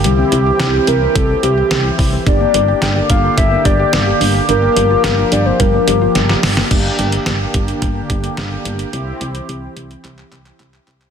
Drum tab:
CC |----------------|----------------|----------------|x---------------|
HH |x-x-x-x-x-x-x-o-|x-x-x-x-x-x-x-o-|x-x-x-x-x-x-x-o-|x-xxx-xxx-xxx-xx|
CP |----------------|----------------|----------------|----------------|
SD |----o-------o---|----o-------o---|----o-------oooo|----o-------o---|
BD |--------o-----o-|o-----o-o-o-----|--------o-------|o-----o-o-o-----|

CC |----------------|
HH |x-xxx-xxx-xxx-xx|
CP |--------xxxxxxxx|
SD |----------------|
BD |----------------|